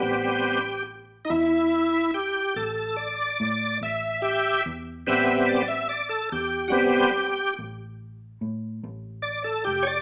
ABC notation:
X:1
M:12/8
L:1/16
Q:3/8=48
K:Ador
V:1 name="Tonewheel organ"
G4 z2 [^DE]4 G2 A2 =d4 e2 [Ge]2 z2 | e2 d e d A G2 [FG]4 z8 d A G [^cd] |]
V:2 name="Tonewheel organ"
[G,B,C]2 z16 z6 | [G,B,C]2 z6 [G,B,C]2 z12 z2 |]
V:3 name="Fingered electric bass" clef=bass
A,,,6 E,,6 A,,,4 A,,2 A,,,4 E,,2 | A,,,6 E,,6 A,,,4 A,,2 A,,,4 =F,,,2 |]